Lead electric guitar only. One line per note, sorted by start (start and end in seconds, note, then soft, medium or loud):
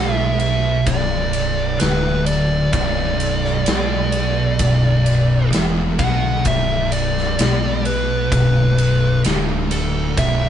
0.00 0.11 F#5 loud
0.11 0.37 E5 loud
0.40 0.88 E5 medium
0.87 1.80 D5 medium
1.80 2.26 B4 medium
2.26 2.70 D5 medium
2.73 5.48 D5 medium
5.99 6.43 F#5 loud
6.47 6.94 E5 loud
6.92 7.85 D5 loud
7.86 8.29 B4 medium
8.33 9.21 B4 medium
9.72 10.15 A4 medium
10.18 10.49 E5 loud